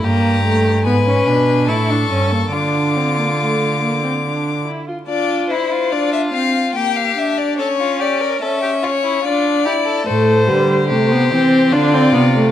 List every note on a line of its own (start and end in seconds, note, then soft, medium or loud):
0.04 0.88 G2 medium
0.04 0.44 A#3 medium
0.04 0.85 G4 medium
0.04 0.82 A#5 medium
0.45 0.85 A3 medium
0.86 1.26 G#2 medium
0.86 0.94 B3 medium
0.86 1.67 B4 medium
0.86 1.70 G#5 medium
1.06 1.29 C#4 medium
1.27 1.69 B2 medium
1.27 1.70 D4 medium
1.68 2.10 A2 medium
1.68 1.91 E4 medium
1.68 2.54 A4 medium
1.68 2.52 C#6 medium
1.90 2.10 D4 medium
2.10 2.52 G2 medium
2.10 2.33 C#4 medium
2.31 2.53 A#3 medium
2.52 4.62 D3 medium
2.52 2.98 D4 medium
2.52 4.66 F4 medium
2.52 4.62 D6 medium
2.96 3.17 C4 medium
3.18 3.26 A#3 medium
3.40 3.81 A3 medium
3.82 4.02 A#3 medium
4.03 4.11 C4 medium
4.25 4.66 D4 medium
4.67 4.87 E4 soft
4.88 4.96 F4 medium
5.08 5.52 D4 medium
5.08 5.52 F4 medium
5.08 5.48 D5 medium
5.50 5.73 E4 medium
5.50 5.94 E4 medium
5.50 5.93 C5 medium
5.71 6.77 F4 medium
5.92 6.33 D4 medium
5.92 6.12 D5 medium
6.13 6.21 E5 medium
6.33 6.75 C4 medium
6.33 6.74 F5 medium
6.75 7.17 A#3 medium
6.75 7.58 G4 medium
6.75 6.98 G5 medium
6.96 7.19 F5 medium
7.17 7.60 D4 medium
7.17 7.39 E5 medium
7.38 7.58 D5 medium
7.59 8.42 C#4 medium
7.59 7.67 A4 medium
7.59 8.02 C#5 medium
7.80 8.02 F4 medium
8.00 8.22 G4 medium
8.00 8.42 D5 medium
8.21 8.43 A#4 medium
8.42 9.23 C#4 medium
8.42 8.61 A4 medium
8.42 8.85 E5 medium
8.62 8.70 G4 medium
8.83 8.91 F4 medium
8.83 9.27 C#5 medium
9.03 9.23 E4 medium
9.24 9.67 D4 medium
9.24 9.64 F4 medium
9.24 10.06 D5 medium
9.65 10.07 E4 medium
9.65 9.73 G4 medium
9.85 10.08 A4 medium
10.06 10.50 A2 medium
10.06 10.48 A3 medium
10.06 10.50 A4 medium
10.06 10.88 C5 medium
10.48 10.92 D3 medium
10.48 10.89 G3 medium
10.48 10.69 B4 medium
10.70 11.74 C5 medium
10.89 11.33 C3 medium
10.89 11.13 A3 medium
10.89 11.74 G4 medium
11.11 11.31 B3 medium
11.31 11.73 E3 medium
11.31 11.74 C4 loud
11.72 12.14 D3 medium
11.72 11.95 D4 loud
11.72 12.52 F4 medium
11.72 12.52 D5 medium
11.93 12.13 C4 loud
12.14 12.52 C3 medium
12.14 12.22 B3 medium
12.35 12.52 A3 medium